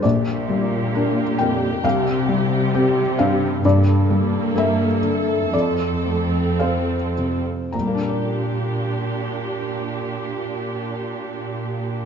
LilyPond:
<<
  \new Staff \with { instrumentName = "Viola section" } { \time 4/4 \key bes \major \tempo 4 = 59 << { g'1 | a'2.~ a'8. r16 | g'1 | } \\ { bes2 g2 | bes2 c'4.~ c'16 r16 | d'1 | } >> }
  \new Staff \with { instrumentName = "Felt piano" } { \time 4/4 \key bes \major d''4. g''8 f''4. f''8 | d''4 e''4 d''4 f''8 r8 | <bes, g bes d' bes' d'' bes''>1 | }
  \new Staff \with { instrumentName = "Felt piano" } { \clef bass \time 4/4 \key bes \major bes,,8 g8 <d' bes'>8 f,8 c,8 g8 <c' g'>8 g,8 | g,8 g8 <bes a'>8 d8 f,8 a8 <c' c''>8 c8 | r1 | }
  \new Staff \with { instrumentName = "Harp" } { \time 4/4 \key bes \major <bes, g d'>8 g8 d'8 bes'8 c8 c'8 g'8 c'8 | g,8 g8 bes8 a'8 f,8 a8 c'8 c''8 | <bes, g bes d' bes' d''>1 | }
  \new Staff \with { instrumentName = "Cello section" } { \clef bass \time 4/4 \key bes \major bes,2 c2 | g,2 f,4.~ f,16 r16 | bes,1 | }
>>